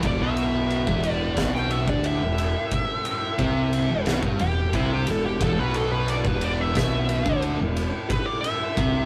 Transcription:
0.03 E1 E2 E3, kick, ride
0.07 D5
0.21 B1 B2 B3 E5
0.37 ride
0.70 ride
0.87 E1 E2 E3, kick
1.03 ride
1.11 D5
1.37 B1 B2 B3, kick, snare, ride
1.55 G5, snare
1.71 E5, ride
1.88 D2 D3 D4 D5, kick
2.04 E5, ride
2.21 E1 E2
2.38 ride
2.71 kick, ride
3.05 ride
3.39 C2 C3 C4, kick, ride
3.73 ride
3.89 E1 E2
4.06 B1 B2 B3, snare, ride
4.22 G1 G2 G3, kick
4.39 E1 E2 G4, ride
4.73 C2 C3 C4 E4, kick, ride
4.93 G4
5.07 E1 E2 A4, ride
5.25 G4
5.41 E1 E2 E3 A4, kick, ride
5.58 B1 B2 B3 B4
5.74 A4, ride
5.92 B4
6.08 D5, ride
6.25 E1 E2 E3 B4, kick
6.41 D5, ride
6.61 E5
6.75 B1 B2 B3 E5, kick, snare, ride
7.09 ride
7.26 D2 D3 D4, kick
7.42 ride
7.59 E1 E2
7.77 ride
8.10 B4, kick, ride
8.26 D5
8.41 E5, ride
8.77 C2 C3 C4, kick, ride

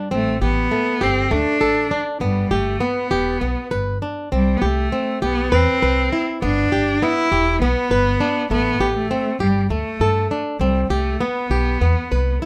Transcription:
0.11 A1 A3 C4
0.41 A1 B3 G4
0.71 A3
1.01 G1 C4 G4
1.31 D2 A3 D4
1.61 A1 A4
1.91 D4
2.20 G1 G3 B3
2.51 G1 A3 G4
2.80 B3
3.11 E1 G4
3.41 B1 B3
3.71 G1 B4
4.02 D4
4.32 C2 G3 C4
4.57 B3
4.62 C2 A3 G4
4.92 C4
5.22 B1 B3 G4
5.52 E2 C4 B4
5.82 C2 B4
6.12 E4
6.42 G1 B3 D4
6.72 G1 G4
7.02 B3 E4
7.31 E1 G4
7.61 B1 B3
7.90 G1 B4
8.20 D4
8.50 A1 A3 B3
8.79 A1 G4
8.97 A3
9.11 C4
9.39 G1 G3 G4
9.70 D2 A3
10.00 G2 A4
10.31 D4
10.59 C2 G3 C4
10.90 C2 A3 G4
11.21 B3
11.49 B1 G4
11.81 E2 B3
12.11 C2 B4
12.42 E4

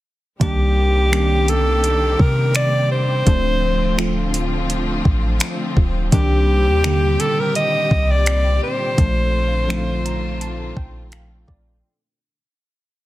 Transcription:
0.40 C2 D#3 G3 A#3 C4 D4 G4, kick, closed hi-hat
1.11 D#3 G3 A#3 C#4, finger snap, closed hi-hat
1.20 D4
1.48 A4, closed hi-hat
1.84 closed hi-hat
2.19 C3 A#4, kick
2.55 D5, finger snap, closed hi-hat
2.92 C5
3.26 D1 D3 F3 A3 C4 D4 F4, kick, closed hi-hat
3.97 F3 A3 C4 F4, finger snap, closed hi-hat
4.34 closed hi-hat
4.70 closed hi-hat
5.05 A1, kick
5.40 finger snap, closed hi-hat
5.77 D1, kick
6.12 C2 A#2 C3 D#3 G3 A#3 D4 G4, kick, closed hi-hat
6.67 D#2
6.83 D3 D#3 G3 A#3, finger snap, closed hi-hat
7.20 A4, closed hi-hat
7.39 A#4
7.55 D#5, closed hi-hat
7.91 C2, kick
8.11 D5
8.26 finger snap, closed hi-hat
8.63 C5
8.97 A#1 D3 F3 A3 C4 D4 F4, kick, closed hi-hat
9.68 F3 A3 C4 D#4, finger snap, closed hi-hat
9.77 F4
10.05 A#5, closed hi-hat
10.41 A5, closed hi-hat
10.76 A#1 G5, kick
11.12 F5, finger snap, closed hi-hat
11.48 A#1 D5, kick

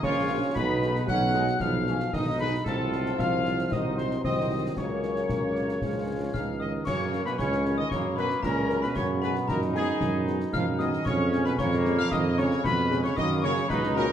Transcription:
0.03 A#1 C#3 F4 C#5 C#6, concert bass drum, snare
0.29 A#3 C#4 F#4
0.55 B1 B2 D#4 B4 B5, concert bass drum, snare, crash
0.82 G#3 D#4 G#4, snare
0.95 snare
1.08 B1 F#3 C#4 F#5 F#6, concert bass drum, snare
1.34 G#3 D#4 G#4, snare
1.47 snare
1.60 B1 F3 B3 F5 F6, concert bass drum, snare
1.87 G#3 C#4 D#4 G#4, snare
2.00 snare
2.13 B1 D#3 D#4 D#5 D#6, concert bass drum, snare
2.39 B2 G#3 D#4 G#4 B4 B5
2.64 C2 A2 F#3 D#4 F4 A4 C5 A5, concert bass drum, snare, crash
2.92 snare
3.06 snare
3.18 C2 F3 F5 F6, concert bass drum, snare
3.45 snare
3.59 snare
3.71 C2 D#3 F#3 D#4 C5 D#5 D#6, concert bass drum, snare
3.97 C3 C5 C6, snare
4.11 snare
4.24 C2 D#3 F#3 C4 D#4 C5 D#5 D#6, concert bass drum, snare
4.75 C#2 C#3 F#3 A#3 C#4 A#4 C#5 C#6, concert bass drum, snare, crash
5.03 snare
5.16 snare
5.29 C#2 A#3, concert bass drum, snare
5.56 snare
5.69 snare
5.81 C#2 F3 C#4 F4 G#4, concert bass drum, snare
6.33 C#2 F3 D#4 F5 F6, concert bass drum, snare
6.60 D#3 D#5 D#6
6.85 F#2 C#3 A#3 C#5 C#6, concert bass drum, snare, crash
7.12 F#3 C#4 A#4, snare
7.25 B2 B4 B5, snare
7.38 C#2 C#3 C#4 C#5 C#6, concert bass drum, snare
7.52 snare
7.65 F#3 C#4 A#4, snare
7.78 D#3 D#5 D#6
7.90 F#2 C#3 A#3 C#5 C#6, concert bass drum, snare
8.16 B2 F#3 C#4 A#4 B4 B5, snare
8.30 snare
8.43 C#2 A#2 C#4 A#4 A#5, concert bass drum, snare
8.69 F#3 C#4 A#4, snare
8.82 B2 B4 B5, snare
8.96 F#2 C#3 B3 C#5 C#6, concert bass drum, snare, crash
9.22 B2 G#3 B3 G#4 B4 B5, snare
9.36 snare
9.48 F#2 A#2 D#4 A#4 A#5, concert bass drum, snare
9.62 snare
9.73 G#2 G#3 B3 G#4 G#5, snare
10.01 F#2, concert bass drum, snare
10.27 G#3 B3 G#4, snare
10.40 snare
10.53 F#2 F3 F5 F6, concert bass drum, snare
10.79 D#3 G#3 B3 G#4 D#5 D#6, snare
10.93 snare
11.05 F2 C#3 C#4 C#5 C#6, concert bass drum, snare, crash
11.32 G#3 C#4 G#4, snare
11.45 B2 B4 B5, snare
11.58 F2 C#3 A#3 C#5 C#6, concert bass drum, snare
11.72 snare
11.85 G#3 C#4 G#4, snare
11.98 F3 F5 F6
12.11 F2 D#3 D#5 D#6, concert bass drum, snare
12.38 C#3 G#3 C#4 G#4 C#5 C#6, snare
12.52 snare
12.64 F2 B2 G#3 B4 B5, concert bass drum, snare
12.91 G#3 C#4 G#4, snare
13.03 C#3 C#5 C#6, snare
13.16 F#2 D#3 A#3 D#5 D#6, concert bass drum, snare, crash
13.42 C#3 A#3 C#4 F#4 C#5 C#6, snare
13.57 snare
13.69 C#2 B2 D#4 B4 B5, concert bass drum, snare
13.83 snare
13.95 A#2 A#3 C#4 F#4 A#4 A#5, snare

